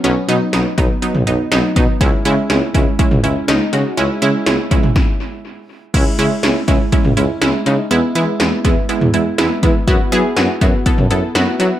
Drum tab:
CC |----------------|----------------|----------------|x---------------|
HH |x-x-x-x-x-x-x-x-|x-x-x-x-x-x-x-x-|x-x-x-x---------|x-x-x-x-x-x-x-x-|
SD |----o-------o---|----o-------o---|----o---o-------|----o-------o---|
T2 |---------o------|---------o------|-------o--------|---------o------|
BD |------o-------o-|o-----o-o-------|------o-o-------|o-----o-o-------|

CC |----------------|----------------|
HH |x-x-x-x-x-x-x-x-|x-x-x-x-x-x-x-x-|
SD |----o-------o---|----o-------o---|
T2 |---------o------|---------o------|
BD |------o-------o-|o-----o-o-------|